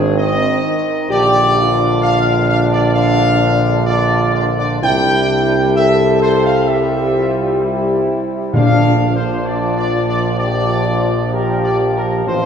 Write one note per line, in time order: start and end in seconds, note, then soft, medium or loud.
0.00 0.83 G#1 loud
0.00 1.10 D#3 medium
0.00 1.06 C4 medium
0.00 0.15 D4 medium
0.00 0.13 G#4 loud
0.18 0.64 C4 medium
0.18 1.06 D#5 loud
0.64 1.07 D#4 medium
1.10 4.78 A#1 loud
1.10 4.82 D3 medium
1.10 5.71 D4 medium
1.10 1.53 G4 loud
1.10 1.99 D5 loud
1.57 2.77 F4 medium
2.02 2.45 F5 loud
2.48 2.59 F5 loud
2.72 2.93 D5 loud
2.94 3.82 D4 medium
2.94 3.82 F5 loud
3.85 4.79 F4 medium
3.85 4.30 D5 loud
4.34 4.45 D5 loud
4.58 4.69 D5 loud
4.82 8.22 C2 medium
4.82 8.55 G3 medium
4.82 5.72 E4 loud
4.82 5.72 G5 loud
5.75 8.54 C4 medium
5.75 6.68 A4 loud
5.75 6.18 E5 loud
6.21 6.43 C5 loud
6.45 6.66 F5 loud
6.67 7.15 G4 medium
6.67 7.61 E5 loud
7.15 7.58 F4 medium
7.62 8.50 E4 medium
8.54 12.23 A#1 medium
8.54 9.89 A#2 loud
8.54 12.46 F3 medium
8.54 12.10 D4 medium
8.54 9.43 D4 medium
8.54 9.12 F5 loud
9.15 9.44 C5 medium
9.46 10.36 F4 medium
9.46 9.76 D5 medium
9.77 10.06 D5 loud
10.08 10.37 D5 loud
10.38 10.83 G4 medium
10.38 11.28 D5 loud
10.87 11.19 F4 medium
11.32 12.23 G4 medium
11.32 11.64 A#4 medium
11.64 11.78 D5 loud
11.96 12.25 A#4 medium
12.27 12.46 A1 medium
12.27 12.46 C4 medium
12.27 12.46 F4 medium
12.27 12.46 C5 loud